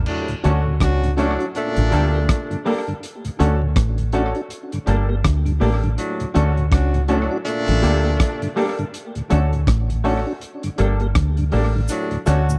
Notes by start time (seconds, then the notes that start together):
0.06 A2 F#3 D4, crash
0.28 D2 A2, closed hi-hat
0.43 D2 D3 A3 C#4 D4 F#4 A4 C#5 D5, closed hi-hat
0.66 D2 A2
0.80 C#2 C#4 D4 F#4, kick, cross-stick, closed hi-hat
1.02 D2 A2, closed hi-hat
1.17 A2 F#3 A3 C#4 D4 F#4 A4 C#5 D5, closed hi-hat
1.39 D4 F#4, closed hi-hat
1.55 A#2 A3 D4, closed hi-hat
1.76 A1 G2 D3, closed hi-hat
1.90 D2 G3 A3 A#3 D4 G4 A4 A#4 D5, closed hi-hat
2.13 A#3 G4 A#4 D5, muted clean electric guitar stroke
2.29 kick, cross-stick, closed hi-hat
2.51 G2 D3, closed hi-hat
2.65 G3 A3 A#3 D4 G4 A4 A#4 D5, open hi-hat
2.88 G2 D3, closed hi-hat
3.03 closed hi-hat
3.25 D2 A2, closed hi-hat
3.39 D2 A3 C#4 D4 F#4 A4 C#5 D5, closed hi-hat
3.62 D2 A2
3.76 A1, kick, cross-stick, closed hi-hat
3.98 D2 A2, closed hi-hat
4.12 A3 C#4 D4 F#4 A4 C#5 D5, closed hi-hat
4.35 D4 F#4, closed hi-hat
4.50 closed hi-hat
4.72 G2 D3, closed hi-hat
4.86 G1 G3 A3 A#3 D4 G4 A4 A#4 D5, closed hi-hat
5.09 A#3 G4 A#4 D5, muted clean electric guitar stroke
5.24 D2, kick, cross-stick, closed hi-hat
5.46 G2 D3, closed hi-hat
5.60 A1 G3 A3 A#3 D4 G4 A4 A#4 D5, open hi-hat
5.83 G2 D3, closed hi-hat
5.97 A2 F#3 D4, closed hi-hat
6.20 D2 A2, closed hi-hat
6.34 D2 D3 A3 C#4 D4 F#4 A4 C#5 D5, closed hi-hat
6.57 D2 A2, closed hi-hat
6.72 C#2 C#4 D4 F#4, kick, cross-stick, closed hi-hat
6.94 D2 A2, closed hi-hat
7.08 A2 F#3 A3 C#4 D4 F#4 A4 C#5 D5, closed hi-hat
7.31 D4 F#4
7.45 A#2 A3 D4, closed hi-hat
7.68 A1 G2 D3, closed hi-hat
7.82 D2 G3 A3 A#3 D4 G4 A4 A#4 D5, closed hi-hat
8.04 A#3 G4 A#4 D5, muted clean electric guitar stroke
8.20 kick, cross-stick, closed hi-hat
8.42 G2 D3, closed hi-hat
8.56 G3 A3 A#3 D4 G4 A4 A#4 D5, open hi-hat
8.79 G2 D3, closed hi-hat
8.94 closed hi-hat
9.15 D2 A2, closed hi-hat
9.30 D2 A3 C#4 D4 F#4 A4 C#5 D5, closed hi-hat
9.53 D2 A2, closed hi-hat
9.67 A1, kick, cross-stick, closed hi-hat
9.90 D2 A2, closed hi-hat
10.04 A3 C#4 D4 F#4 A4 C#5 D5, open hi-hat
10.27 D4 F#4
10.41 closed hi-hat
10.63 G2 D3, closed hi-hat
10.78 G1 G3 A3 A#3 D4 G4 A4 A#4 D5, closed hi-hat
11.00 A#3 G4 A#4 D5, muted clean electric guitar stroke, closed hi-hat
11.15 D2, kick, cross-stick, closed hi-hat
11.37 G2 D3, closed hi-hat
11.52 A1 G3 A3 A#3 D4 G4 A4 A#4 D5, open hi-hat
11.75 G2 D3
11.88 A2 F#3 D4, closed hi-hat, cabasa
12.11 D2 A2, closed hi-hat
12.26 D2 D3 A3 C#4 D4 F#4 A4 C#5 D5, closed hi-hat, cabasa
12.49 D2 A2, cabasa